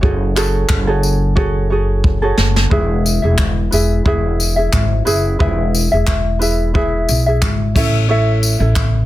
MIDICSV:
0, 0, Header, 1, 4, 480
1, 0, Start_track
1, 0, Key_signature, 4, "major"
1, 0, Tempo, 671141
1, 22, Time_signature, 4, 2, 24, 8
1, 6476, End_track
2, 0, Start_track
2, 0, Title_t, "Ukulele"
2, 0, Program_c, 0, 24
2, 7, Note_on_c, 0, 73, 58
2, 16, Note_on_c, 0, 66, 63
2, 22, Note_on_c, 0, 68, 67
2, 29, Note_on_c, 0, 69, 71
2, 245, Note_off_c, 0, 73, 0
2, 250, Note_off_c, 0, 66, 0
2, 254, Note_off_c, 0, 68, 0
2, 254, Note_on_c, 0, 73, 82
2, 258, Note_off_c, 0, 69, 0
2, 259, Note_on_c, 0, 66, 89
2, 263, Note_on_c, 0, 68, 97
2, 267, Note_on_c, 0, 69, 108
2, 615, Note_off_c, 0, 69, 0
2, 622, Note_off_c, 0, 68, 0
2, 624, Note_on_c, 0, 69, 83
2, 628, Note_off_c, 0, 66, 0
2, 629, Note_off_c, 0, 73, 0
2, 630, Note_on_c, 0, 68, 74
2, 637, Note_on_c, 0, 66, 66
2, 637, Note_on_c, 0, 73, 69
2, 961, Note_off_c, 0, 73, 0
2, 964, Note_off_c, 0, 66, 0
2, 969, Note_off_c, 0, 68, 0
2, 969, Note_on_c, 0, 73, 87
2, 973, Note_on_c, 0, 66, 92
2, 976, Note_off_c, 0, 69, 0
2, 978, Note_on_c, 0, 68, 83
2, 985, Note_on_c, 0, 69, 96
2, 1208, Note_off_c, 0, 73, 0
2, 1215, Note_off_c, 0, 66, 0
2, 1217, Note_on_c, 0, 73, 62
2, 1221, Note_off_c, 0, 68, 0
2, 1224, Note_off_c, 0, 69, 0
2, 1224, Note_on_c, 0, 66, 65
2, 1230, Note_on_c, 0, 68, 73
2, 1238, Note_on_c, 0, 69, 66
2, 1579, Note_off_c, 0, 69, 0
2, 1582, Note_off_c, 0, 68, 0
2, 1588, Note_on_c, 0, 69, 81
2, 1590, Note_off_c, 0, 66, 0
2, 1591, Note_on_c, 0, 68, 72
2, 1592, Note_off_c, 0, 73, 0
2, 1599, Note_on_c, 0, 66, 66
2, 1601, Note_on_c, 0, 73, 63
2, 1927, Note_off_c, 0, 73, 0
2, 1930, Note_on_c, 0, 71, 77
2, 1933, Note_off_c, 0, 68, 0
2, 1938, Note_on_c, 0, 64, 78
2, 1939, Note_off_c, 0, 66, 0
2, 1940, Note_off_c, 0, 69, 0
2, 1942, Note_on_c, 0, 68, 90
2, 1948, Note_on_c, 0, 76, 84
2, 2295, Note_off_c, 0, 76, 0
2, 2301, Note_off_c, 0, 71, 0
2, 2304, Note_on_c, 0, 76, 62
2, 2309, Note_off_c, 0, 68, 0
2, 2313, Note_off_c, 0, 64, 0
2, 2318, Note_on_c, 0, 68, 51
2, 2327, Note_on_c, 0, 64, 46
2, 2648, Note_off_c, 0, 76, 0
2, 2650, Note_off_c, 0, 64, 0
2, 2651, Note_on_c, 0, 71, 65
2, 2655, Note_off_c, 0, 68, 0
2, 2658, Note_on_c, 0, 64, 66
2, 2668, Note_on_c, 0, 68, 76
2, 2674, Note_on_c, 0, 76, 79
2, 2888, Note_off_c, 0, 71, 0
2, 2891, Note_off_c, 0, 64, 0
2, 2896, Note_on_c, 0, 71, 81
2, 2897, Note_off_c, 0, 68, 0
2, 2900, Note_on_c, 0, 64, 80
2, 2903, Note_off_c, 0, 76, 0
2, 2908, Note_on_c, 0, 68, 96
2, 2912, Note_on_c, 0, 76, 92
2, 3254, Note_off_c, 0, 76, 0
2, 3262, Note_on_c, 0, 76, 59
2, 3263, Note_off_c, 0, 68, 0
2, 3272, Note_off_c, 0, 71, 0
2, 3272, Note_on_c, 0, 68, 48
2, 3274, Note_off_c, 0, 64, 0
2, 3283, Note_on_c, 0, 64, 49
2, 3608, Note_off_c, 0, 64, 0
2, 3612, Note_on_c, 0, 71, 77
2, 3614, Note_off_c, 0, 68, 0
2, 3617, Note_off_c, 0, 76, 0
2, 3617, Note_on_c, 0, 64, 84
2, 3623, Note_on_c, 0, 68, 90
2, 3625, Note_on_c, 0, 76, 92
2, 3847, Note_off_c, 0, 71, 0
2, 3853, Note_off_c, 0, 64, 0
2, 3853, Note_off_c, 0, 68, 0
2, 3855, Note_on_c, 0, 71, 86
2, 3861, Note_off_c, 0, 76, 0
2, 3861, Note_on_c, 0, 64, 85
2, 3862, Note_on_c, 0, 68, 85
2, 3870, Note_on_c, 0, 76, 86
2, 4223, Note_off_c, 0, 76, 0
2, 4231, Note_off_c, 0, 71, 0
2, 4232, Note_on_c, 0, 76, 63
2, 4234, Note_off_c, 0, 64, 0
2, 4235, Note_off_c, 0, 68, 0
2, 4243, Note_on_c, 0, 68, 53
2, 4252, Note_on_c, 0, 64, 45
2, 4571, Note_off_c, 0, 64, 0
2, 4571, Note_on_c, 0, 71, 73
2, 4577, Note_off_c, 0, 68, 0
2, 4580, Note_on_c, 0, 64, 75
2, 4582, Note_off_c, 0, 76, 0
2, 4587, Note_on_c, 0, 68, 70
2, 4593, Note_on_c, 0, 76, 81
2, 4810, Note_off_c, 0, 71, 0
2, 4813, Note_off_c, 0, 64, 0
2, 4819, Note_off_c, 0, 68, 0
2, 4819, Note_on_c, 0, 71, 86
2, 4821, Note_on_c, 0, 64, 83
2, 4825, Note_off_c, 0, 76, 0
2, 4828, Note_on_c, 0, 68, 94
2, 4833, Note_on_c, 0, 76, 98
2, 5186, Note_off_c, 0, 76, 0
2, 5193, Note_off_c, 0, 71, 0
2, 5194, Note_off_c, 0, 64, 0
2, 5195, Note_on_c, 0, 76, 65
2, 5196, Note_off_c, 0, 68, 0
2, 5205, Note_on_c, 0, 68, 51
2, 5215, Note_on_c, 0, 64, 48
2, 5541, Note_off_c, 0, 64, 0
2, 5542, Note_on_c, 0, 73, 82
2, 5543, Note_off_c, 0, 76, 0
2, 5548, Note_off_c, 0, 68, 0
2, 5549, Note_on_c, 0, 64, 80
2, 5554, Note_on_c, 0, 69, 89
2, 5557, Note_on_c, 0, 76, 86
2, 5774, Note_off_c, 0, 73, 0
2, 5778, Note_off_c, 0, 64, 0
2, 5782, Note_on_c, 0, 73, 84
2, 5784, Note_off_c, 0, 69, 0
2, 5787, Note_on_c, 0, 64, 83
2, 5790, Note_off_c, 0, 76, 0
2, 5792, Note_on_c, 0, 69, 90
2, 5799, Note_on_c, 0, 76, 99
2, 6136, Note_off_c, 0, 76, 0
2, 6142, Note_off_c, 0, 73, 0
2, 6144, Note_on_c, 0, 76, 57
2, 6151, Note_off_c, 0, 69, 0
2, 6157, Note_off_c, 0, 64, 0
2, 6159, Note_on_c, 0, 69, 50
2, 6164, Note_on_c, 0, 64, 47
2, 6476, Note_off_c, 0, 64, 0
2, 6476, Note_off_c, 0, 69, 0
2, 6476, Note_off_c, 0, 76, 0
2, 6476, End_track
3, 0, Start_track
3, 0, Title_t, "Upright bass"
3, 0, Program_c, 1, 32
3, 21, Note_on_c, 1, 30, 92
3, 474, Note_off_c, 1, 30, 0
3, 498, Note_on_c, 1, 30, 88
3, 1673, Note_off_c, 1, 30, 0
3, 1702, Note_on_c, 1, 30, 93
3, 1924, Note_off_c, 1, 30, 0
3, 1942, Note_on_c, 1, 28, 101
3, 2286, Note_off_c, 1, 28, 0
3, 2314, Note_on_c, 1, 28, 89
3, 2635, Note_off_c, 1, 28, 0
3, 2666, Note_on_c, 1, 28, 93
3, 2886, Note_off_c, 1, 28, 0
3, 2903, Note_on_c, 1, 28, 107
3, 3355, Note_off_c, 1, 28, 0
3, 3382, Note_on_c, 1, 32, 89
3, 3604, Note_off_c, 1, 32, 0
3, 3624, Note_on_c, 1, 30, 82
3, 3845, Note_off_c, 1, 30, 0
3, 3867, Note_on_c, 1, 28, 100
3, 4209, Note_off_c, 1, 28, 0
3, 4241, Note_on_c, 1, 28, 90
3, 5038, Note_off_c, 1, 28, 0
3, 5070, Note_on_c, 1, 35, 99
3, 5287, Note_off_c, 1, 35, 0
3, 5308, Note_on_c, 1, 32, 94
3, 5527, Note_off_c, 1, 32, 0
3, 5548, Note_on_c, 1, 33, 95
3, 6128, Note_off_c, 1, 33, 0
3, 6152, Note_on_c, 1, 33, 95
3, 6473, Note_off_c, 1, 33, 0
3, 6476, End_track
4, 0, Start_track
4, 0, Title_t, "Drums"
4, 21, Note_on_c, 9, 36, 101
4, 93, Note_off_c, 9, 36, 0
4, 263, Note_on_c, 9, 54, 71
4, 265, Note_on_c, 9, 39, 87
4, 335, Note_off_c, 9, 54, 0
4, 336, Note_off_c, 9, 39, 0
4, 494, Note_on_c, 9, 39, 116
4, 498, Note_on_c, 9, 36, 113
4, 566, Note_off_c, 9, 39, 0
4, 569, Note_off_c, 9, 36, 0
4, 739, Note_on_c, 9, 54, 58
4, 811, Note_off_c, 9, 54, 0
4, 978, Note_on_c, 9, 36, 98
4, 1049, Note_off_c, 9, 36, 0
4, 1460, Note_on_c, 9, 36, 111
4, 1531, Note_off_c, 9, 36, 0
4, 1699, Note_on_c, 9, 38, 101
4, 1770, Note_off_c, 9, 38, 0
4, 1833, Note_on_c, 9, 38, 87
4, 1904, Note_off_c, 9, 38, 0
4, 1941, Note_on_c, 9, 36, 103
4, 2012, Note_off_c, 9, 36, 0
4, 2187, Note_on_c, 9, 54, 67
4, 2258, Note_off_c, 9, 54, 0
4, 2418, Note_on_c, 9, 39, 121
4, 2421, Note_on_c, 9, 36, 115
4, 2490, Note_off_c, 9, 39, 0
4, 2492, Note_off_c, 9, 36, 0
4, 2664, Note_on_c, 9, 54, 64
4, 2735, Note_off_c, 9, 54, 0
4, 2901, Note_on_c, 9, 36, 104
4, 2973, Note_off_c, 9, 36, 0
4, 3146, Note_on_c, 9, 54, 64
4, 3218, Note_off_c, 9, 54, 0
4, 3383, Note_on_c, 9, 36, 116
4, 3383, Note_on_c, 9, 39, 107
4, 3454, Note_off_c, 9, 39, 0
4, 3455, Note_off_c, 9, 36, 0
4, 3624, Note_on_c, 9, 54, 63
4, 3696, Note_off_c, 9, 54, 0
4, 3864, Note_on_c, 9, 36, 107
4, 3936, Note_off_c, 9, 36, 0
4, 4109, Note_on_c, 9, 54, 70
4, 4181, Note_off_c, 9, 54, 0
4, 4342, Note_on_c, 9, 39, 113
4, 4345, Note_on_c, 9, 36, 115
4, 4413, Note_off_c, 9, 39, 0
4, 4417, Note_off_c, 9, 36, 0
4, 4589, Note_on_c, 9, 54, 62
4, 4660, Note_off_c, 9, 54, 0
4, 4828, Note_on_c, 9, 36, 99
4, 4899, Note_off_c, 9, 36, 0
4, 5068, Note_on_c, 9, 54, 65
4, 5139, Note_off_c, 9, 54, 0
4, 5308, Note_on_c, 9, 36, 113
4, 5308, Note_on_c, 9, 39, 110
4, 5379, Note_off_c, 9, 36, 0
4, 5380, Note_off_c, 9, 39, 0
4, 5547, Note_on_c, 9, 36, 108
4, 5550, Note_on_c, 9, 49, 77
4, 5550, Note_on_c, 9, 54, 65
4, 5619, Note_off_c, 9, 36, 0
4, 5621, Note_off_c, 9, 49, 0
4, 5622, Note_off_c, 9, 54, 0
4, 6029, Note_on_c, 9, 54, 75
4, 6100, Note_off_c, 9, 54, 0
4, 6265, Note_on_c, 9, 39, 114
4, 6266, Note_on_c, 9, 36, 110
4, 6336, Note_off_c, 9, 39, 0
4, 6337, Note_off_c, 9, 36, 0
4, 6476, End_track
0, 0, End_of_file